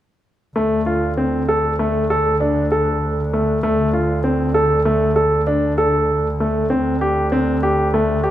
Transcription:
0.56 double bass D2, grand piano A3
0.86 grand piano F4
1.17 grand piano C4
1.49 grand piano A4
1.79 grand piano A3
2.10 grand piano A4
2.40 grand piano D4
2.72 grand piano A4
3.33 grand piano A3
3.63 grand piano A3
3.93 grand piano F4
4.24 grand piano C4
4.54 grand piano A4
4.85 grand piano A3
5.16 grand piano A4
5.47 grand piano D4
5.78 grand piano A4
6.40 grand piano A3
6.70 double bass D2, grand piano C4
7.01 grand piano G4
7.32 grand piano C4
7.63 grand piano G4
7.94 grand piano A3
8.23 grand piano G4

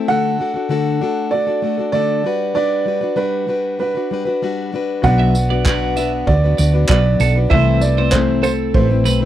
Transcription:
0.08 steel-string acoustic guitar D3 A3 D4 F#4 A4, upright piano F#5
0.39 steel-string acoustic guitar A3 D4 F#4 A4
0.54 steel-string acoustic guitar D4 F#4 A4
0.69 steel-string acoustic guitar D3 A3 D4 F#4 A4
1.01 steel-string acoustic guitar A3 D4 F#4 A4
1.31 steel-string acoustic guitar A3 D4 F#4, upright piano D5
1.35 steel-string acoustic guitar A4
1.47 steel-string acoustic guitar D4 F#4 A4
1.62 steel-string acoustic guitar A3 D4 F#4 A4
1.78 steel-string acoustic guitar D4 F#4 A4
1.92 steel-string acoustic guitar D3 A3 D4 F#4 A4, upright piano D5
2.24 steel-string acoustic guitar G3 D4 F#4 B4
2.55 steel-string acoustic guitar G3 D4 F#4 B4, upright piano D5
2.86 steel-string acoustic guitar G3 D4 F#4 B4
3.01 steel-string acoustic guitar D4 F#4 B4
3.16 steel-string acoustic guitar G3 D4 F#4 B4, upright piano B4
3.47 steel-string acoustic guitar G3 D4 F#4 B4
3.79 steel-string acoustic guitar G3 D4 F#4 B4, upright piano B4
3.95 steel-string acoustic guitar D4 F#4 B4
4.11 steel-string acoustic guitar G3 D4 F#4 B4
4.25 steel-string acoustic guitar D4 F#4 B4
4.42 steel-string acoustic guitar G3 D4 F#4 B4
4.73 steel-string acoustic guitar G3 D4 F#4 B4
5.02 fretless electric bass B1, steel-string acoustic guitar B2 F#3 B3 D4 F#4 B4, grand piano F#4 B4, upright piano F#5, kick
5.06 grand piano D5
5.19 clean electric guitar E5
5.34 steel-string acoustic guitar B3 D4 F#4 B4, tambourine
5.50 steel-string acoustic guitar B3 D4 F#4 B4, clean electric guitar D5
5.65 steel-string acoustic guitar B2 F#3 B3 D4 F#4 B4, clean electric guitar D5, kick, clap
5.96 steel-string acoustic guitar B3 D4 F#4 B4, clean electric guitar E5, tambourine
6.27 fretless electric bass D2, steel-string acoustic guitar B3 D4 F#4 B4, upright piano D5, kick
6.44 steel-string acoustic guitar B3 D4 F#4 B4
6.58 fretless electric bass D2, steel-string acoustic guitar B3 D4 F#4 B4, clean electric guitar D5, tambourine
6.74 steel-string acoustic guitar B3 D4 F#4 B4
6.89 fretless electric bass B1, steel-string acoustic guitar B2 F#3 B3 D4 F#4 B4, clean electric guitar B4, upright piano D5, kick, clap
7.20 fretless electric bass B1, steel-string acoustic guitar B3 D4 F#4 B4, clean electric guitar A4, tambourine
7.36 steel-string acoustic guitar B3 D4 F#4 B4
7.49 fretless electric bass C2, steel-string acoustic guitar C3 E3 A3 C4 E4, grand piano C4 E4 A4 E5 B5, clean electric guitar C5, upright piano E5, kick
7.53 steel-string acoustic guitar B4
7.81 steel-string acoustic guitar A3 C4 E4 B4, upright piano D5, tambourine
7.97 steel-string acoustic guitar A3 C4 E4 B4, clean electric guitar C5
8.12 steel-string acoustic guitar C3 E3 A3 C4 E4, upright piano C5, kick, clap
8.43 steel-string acoustic guitar A3 E4, clean electric guitar A4, upright piano C5, tambourine
8.74 fretless electric bass A1, steel-string acoustic guitar A3 C4 E4 B4, upright piano C5, kick
8.90 steel-string acoustic guitar A3 C4 E4 B4
9.05 fretless electric bass B1, steel-string acoustic guitar A3 C4 E4 B4, clean electric guitar B4, tambourine
9.21 steel-string acoustic guitar E4 B4

